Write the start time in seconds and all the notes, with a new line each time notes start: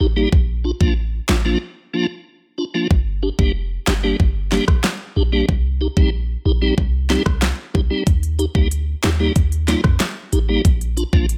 0.00 A1 D#4 G4
0.16 G3 A#3 D#4 G4
0.32 A#1, kick
0.64 D4 F4
0.80 A1 F3 A#3 D4 F4, kick
1.29 A1 D4 F4, snare, clap
1.45 F3 A#3 D4 F4
1.94 F3 A#3 D4 F4
2.58 D4 F4
2.74 F3 A#3 D4 F4
2.91 G1, kick
3.23 D4 G4
3.39 F1 G3 A#3 D4 G4, kick
3.87 G1 D4 G4, snare, clap
4.03 G3 A#3 D4 G4
4.20 G1, kick
4.52 G3 A#3 D4 G4, snare
4.68 A#1, kick, cross-stick
4.84 snare, clap
5.16 A#1 D4 G4
5.32 G3 A#3 D4 G4
5.49 C2, kick
5.81 D#4 G4
5.97 A#1 G3 C4 D#4 G4, kick
6.45 A#1 D#4 G4
6.62 G3 C4 D#4 G4
6.78 C2, kick
7.10 G3 C4 D#4 G4, snare
7.26 C2, kick, cross-stick
7.42 snare, clap
7.74 C2 D#4 G4, kick
7.90 G3 C4 D#4 G4
8.07 D#2, kick, closed hi-hat
8.23 closed hi-hat
8.39 D#4 G4, closed hi-hat
8.55 D2 G3 A#3 D#4 G4, kick
8.71 closed hi-hat
9.03 D#2 D#4 G4, snare, clap, closed hi-hat
9.20 G3 A#3 D#4 G4
9.36 D#2, kick, closed hi-hat
9.52 closed hi-hat
9.68 G3 A#3 D#4 F4, snare, closed hi-hat
9.84 F2, kick, cross-stick
10.00 snare, clap, closed hi-hat
10.32 A1 D#4 G4, closed hi-hat
10.49 G3 A#3 D#4 G4
10.65 A#1, kick, closed hi-hat
10.81 closed hi-hat
10.97 D4 F4, closed hi-hat
11.13 A1 F3 A#3 D4 F4, kick
11.29 closed hi-hat